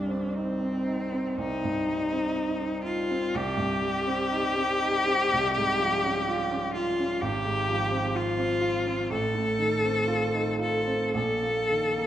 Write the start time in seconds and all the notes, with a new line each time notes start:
Already playing: C2 G2 G3 D4
0.09 C4
0.34 C4 D#4
0.61 C4
0.87 D#4
1.13 C4
1.37 C2 D#4
1.64 G2
1.88 G3
2.13 C4
2.37 D#4
2.61 C4
2.84 D#4 F4
3.11 C4
3.35 C2 G4
3.57 G2
3.82 G3
4.07 C4
4.32 D#4
4.55 C4
4.82 D#4
5.07 C4
5.33 C2
5.57 G#2
5.79 F3
6.04 C#4
6.29 F4
6.51 C#4
6.74 F4
6.99 C#4
7.21 G#1 G4
7.45 G#2
7.69 F3
7.91 C4
8.15 F4
8.38 C4
8.61 F4
8.87 C4
9.10 A1 A4
9.35 A2
9.59 D#3
9.84 C4
10.07 F4
10.34 D#4
10.59 F4 A4
10.87 C4
11.15 A#1 A4
11.43 A#2
11.71 D#3
11.98 A#3